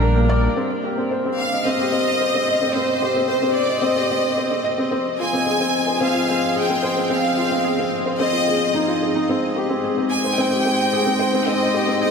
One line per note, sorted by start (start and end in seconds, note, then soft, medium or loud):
0.00 0.49 A#1 medium
0.00 0.57 G3 medium
0.00 0.16 A#3 loud
0.00 0.56 D4 medium
0.00 0.58 G4 medium
0.00 0.58 A#4 medium
0.00 2.31 A#4 medium
0.00 0.29 D5 medium
0.00 1.41 G5 medium
0.16 0.29 A#3 medium
0.29 0.37 D5 loud
0.43 0.51 A#3 medium
0.56 4.93 C3 medium
0.56 0.69 C4 medium
0.66 10.88 C4 medium
0.81 0.97 G4 medium
0.81 11.04 D#5 medium
0.97 1.10 C4 medium
1.11 1.24 C5 medium
1.25 1.38 C4 medium
1.38 1.64 F5 medium
1.53 1.60 D#5 medium
1.65 1.78 C4 medium
1.65 2.75 D#5 medium
1.77 4.93 G4 medium
1.77 1.92 G4 medium
1.92 2.06 C4 medium
2.21 2.33 C5 medium
2.34 2.47 C4 medium
2.48 2.55 D#5 medium
2.62 2.69 C4 medium
2.74 2.88 C4 medium
2.74 3.27 C5 medium
3.02 3.15 G4 medium
3.15 3.28 C4 medium
3.28 3.54 C5 medium
3.28 3.42 C5 medium
3.42 3.55 C4 medium
3.54 3.80 D5 medium
3.69 3.77 D#5 medium
3.81 3.96 C4 medium
3.81 4.64 D#5 medium
3.96 4.10 G4 medium
4.10 4.24 C4 medium
4.38 4.51 C5 medium
4.51 4.64 C4 medium
4.64 4.73 D#5 medium
4.78 4.86 C4 medium
4.91 9.30 F3 medium
4.91 5.05 C4 medium
5.18 5.33 F4 medium
5.18 10.82 G#4 medium
5.18 5.98 G#5 medium
5.33 5.46 C4 medium
5.46 5.60 G#4 medium
5.60 5.73 C4 medium
5.87 5.95 C5 medium
6.01 6.14 C4 medium
6.01 6.57 F5 medium
6.15 6.28 F4 medium
6.29 6.42 C4 medium
6.56 6.69 G#4 medium
6.56 7.08 G5 medium
6.69 6.83 C4 medium
6.83 6.91 C5 medium
6.97 7.05 C4 medium
7.10 7.23 C4 medium
7.10 7.93 F5 medium
7.37 7.51 F4 medium
7.52 7.65 C4 medium
7.64 7.78 G#4 medium
7.79 7.92 C4 medium
8.06 8.14 C5 medium
8.19 8.33 C4 medium
8.19 8.98 D#5 loud
8.33 8.46 F4 medium
8.47 8.60 G#4 medium
8.74 8.88 D#4 medium
8.88 9.01 F4 medium
9.02 9.15 G#4 medium
9.15 9.28 D#4 medium
9.28 12.11 G#3 medium
9.28 9.42 C4 medium
9.56 9.69 G4 medium
9.70 9.83 C4 medium
9.84 9.97 G#4 medium
9.97 10.10 C4 medium
9.97 12.11 D#4 medium
10.11 10.36 G#5 medium
10.24 10.32 C5 medium
10.38 10.51 C4 medium
10.38 11.48 G5 medium
10.43 12.11 G5 medium
10.51 10.64 G4 medium
10.65 10.78 C4 medium
10.77 12.11 C5 medium
10.93 11.06 G#4 medium
11.06 11.19 C4 medium
11.19 11.27 C5 medium
11.34 11.41 C4 medium
11.46 11.60 C4 medium
11.46 12.01 D#5 medium
11.74 11.87 G4 medium
11.87 12.01 C4 medium
12.01 12.11 G#4 medium
12.01 12.11 D#5 medium